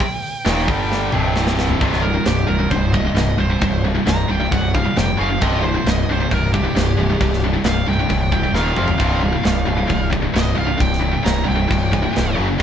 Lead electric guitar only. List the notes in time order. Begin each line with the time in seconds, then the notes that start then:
Already playing: G5
2.02 A#4
2.26 G4
2.48 A#4
2.70 C5
2.93 D#5
3.40 C5
4.09 A#5
4.31 G5
4.52 F#5
4.75 F5
4.98 G5
5.19 F5
5.43 D#5
5.64 C5
5.90 D#5
6.12 C5
6.34 A#4
6.53 G4
7.66 F5
7.89 G5
8.33 G5
8.56 F5
8.78 F5
10.34 D#5
10.58 F5
10.81 G5
11.24 A#5
11.48 G5